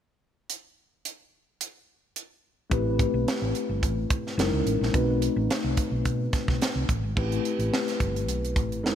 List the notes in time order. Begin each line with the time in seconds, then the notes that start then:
0.50 closed hi-hat
1.05 closed hi-hat
1.61 closed hi-hat
2.16 closed hi-hat
2.70 A1 A3 C4 E4 G4 B4, kick, closed hi-hat
2.99 kick, closed hi-hat
3.14 B1
3.28 snare, closed hi-hat
3.42 A1
3.55 closed hi-hat
3.69 G1
3.83 A1, kick, closed hi-hat
4.10 kick, closed hi-hat
4.27 snare
4.37 F#1 G#3 C#4 D#4 E4 A#4, snare, closed hi-hat
4.53 C#2
4.66 A1, closed hi-hat
4.81 A#1, snare
4.93 B1 A3 C4 D#4 F#4 B4, kick, closed hi-hat
5.22 closed hi-hat
5.36 A1
5.51 snare, closed hi-hat
5.64 C2
5.77 kick, closed hi-hat
5.92 B1
6.05 B2, kick, closed hi-hat
6.33 kick, snare, closed hi-hat
6.48 B1, kick, snare
6.62 snare, closed hi-hat
6.75 C2
6.89 A1, kick, closed hi-hat
7.03 G#1
7.16 A1 A3 C4 E4 G4 B4, kick, crash
7.32 closed hi-hat
7.45 closed hi-hat
7.59 A1, closed hi-hat
7.74 snare
7.88 snare, closed hi-hat
8.00 G1, kick, closed hi-hat
8.16 closed hi-hat
8.28 B1, closed hi-hat
8.45 closed hi-hat
8.56 A1, kick, closed hi-hat
8.72 closed hi-hat
8.83 F#1 G#3 C#4 D#4 E4 A#4, snare